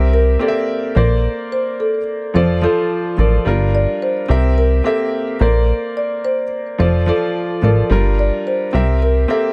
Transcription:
Already playing: C2 C4 G4 A#4 E5
0.14 A#4
0.39 A#3 C4 G4 A4 D5
0.48 E5
0.95 A#1 A#3 A#4 C5 D5
1.52 C5
1.80 A4
2.34 F1 F3 F4 A4 C5 D5
2.62 F3 F4 A4 C5
3.17 A1 F3 F4 A4 A#4 D5
3.45 G1 G3 D4 F4 A#4
3.75 D5
4.02 C5
4.28 C2 C4 G4 A#4 E5
4.58 A#4
4.84 A#3 C4 G4 A4 E5
5.40 A#1 A#3 A#4 C5 D5
5.97 D5
6.25 C5
6.78 F1 F3 F4 A4 C5 D5
7.06 F3 F4 A4 D5
7.62 A1 F3 F4 A4 A#4 D5
7.90 G1 G3 D4 F4 A#4
8.19 D5
8.47 C5
8.73 C2 C4 G4 A#4 E5
9.02 A#4
9.28 A#3 C4 G4 A4 E5

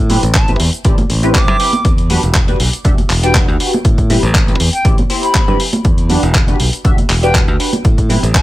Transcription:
Already playing: A2
0.10 C4 E4 G4 B4, open hi-hat, high conga, low conga
0.23 A1, closed hi-hat, shaker
0.35 A5, kick, clap, closed hi-hat, shaker
0.48 C4 E4 G4 B4, closed hi-hat, high conga, shaker
0.60 E2, open hi-hat
0.73 closed hi-hat, shaker
0.84 A1 C4 E4 G4 D5, kick, closed hi-hat, shaker
0.98 closed hi-hat, high conga, shaker
1.10 A1, open hi-hat
1.23 C4 E4 G4 B4, closed hi-hat, shaker
1.34 D6, kick, clap, closed hi-hat, high conga, shaker
1.48 G2, low conga, shaker
1.60 C4 E4 G4 B4, open hi-hat
1.73 closed hi-hat, high conga, shaker
1.85 E2, kick, closed hi-hat, shaker
1.98 closed hi-hat, shaker
2.10 D4 F#4 G4 B4, open hi-hat, high conga, low conga
2.23 E1, closed hi-hat, shaker
2.34 kick, clap, closed hi-hat, shaker
2.48 D4 F#4 G4 B4, closed hi-hat, high conga, shaker
2.60 B1, open hi-hat
2.73 closed hi-hat, shaker
2.84 E1 D4 F#4 G4 E5, kick, closed hi-hat, shaker
2.98 closed hi-hat, high conga, shaker
3.10 E1, clap, open hi-hat
3.23 D4 F#4 G4 B4 G5, closed hi-hat, shaker
3.35 kick, clap, closed hi-hat, high conga, shaker
3.48 D2, shaker
3.60 D4 F#4 G4 B4, open hi-hat
3.73 closed hi-hat, high conga, shaker
3.85 A2, kick, closed hi-hat, shaker
3.98 kick, closed hi-hat, shaker
4.10 C4 E4 G4 B4, open hi-hat, high conga, low conga
4.23 A1, closed hi-hat, shaker
4.35 kick, clap, closed hi-hat, shaker
4.48 C4 E4 G4 B4, closed hi-hat, high conga, shaker
4.60 E2, open hi-hat
4.73 G5, closed hi-hat, shaker
4.85 A1 C4 E4 G4 D5, kick, closed hi-hat, shaker
4.98 closed hi-hat, high conga, shaker
5.10 C4 E4 G4 C5, open hi-hat
5.23 B5, closed hi-hat, shaker
5.35 kick, clap, closed hi-hat, high conga, shaker
5.48 G2 C4 E4 G4 B4, low conga, shaker
5.60 open hi-hat
5.73 closed hi-hat, high conga, shaker
5.84 E2, kick, closed hi-hat, shaker
5.98 closed hi-hat, shaker
6.09 D4 F#4 G4 B4, open hi-hat, high conga, low conga
6.23 E1, closed hi-hat, shaker
6.35 kick, clap, closed hi-hat, shaker
6.47 D4 F#4 G4 B4, closed hi-hat, high conga, shaker
6.60 B1, open hi-hat
6.73 closed hi-hat, shaker
6.84 E1 D4 F#4 G4 E5, kick, closed hi-hat, shaker
6.98 closed hi-hat, high conga, shaker
7.10 E1, clap, open hi-hat
7.23 D4 F#4 G4 B4 G5, closed hi-hat, shaker
7.35 kick, clap, closed hi-hat, high conga, shaker
7.47 D2, shaker
7.60 D4 F#4 G4 B4, open hi-hat
7.72 closed hi-hat, high conga, shaker
7.85 A2, kick, closed hi-hat, shaker
7.98 kick, closed hi-hat, shaker
8.09 C4 E4 G4 B4, open hi-hat, high conga, low conga
8.23 A1, closed hi-hat, shaker
8.35 A5, kick, clap, closed hi-hat, shaker

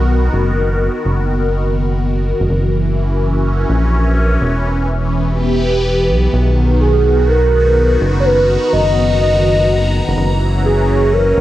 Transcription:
Already playing: B1 D#3 B3 F#4 A#4
0.33 F#1
1.05 F#1
2.40 F#1
2.49 F#1 E3
3.02 C#4
3.69 A#1
4.41 E1
5.00 B3
5.30 G4 B4
6.09 B1
6.33 B1 D#3
6.81 G#4
6.94 F#4
7.29 A#4
8.01 F#1
8.07 A#5
8.20 C#5
8.25 B4
8.73 F#1 D#5
9.21 D#5
10.08 F#1
10.17 F#1 E3
10.46 C#4
10.65 G#4
11.13 A#4
11.37 A#1

